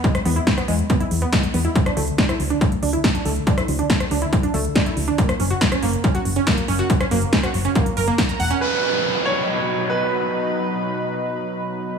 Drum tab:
HH |xxoxxxoxxxoxxxox|xxoxxxoxxxoxxxox|xxoxxxoxxxoxxxox|xxoxxxoxxxoxxxox|
SD |-r--or------o---|-r--or------o---|-r--or------o---|-r--or------o---|
BD |o---o---o---o---|o---o---o---o---|o---o---o---o---|o---o---o---o---|

HH |xxoxxxoxxxoxxxox|----------------|----------------|
SD |-r--or------o---|----------------|----------------|
BD |o---o---o---o---|----------------|----------------|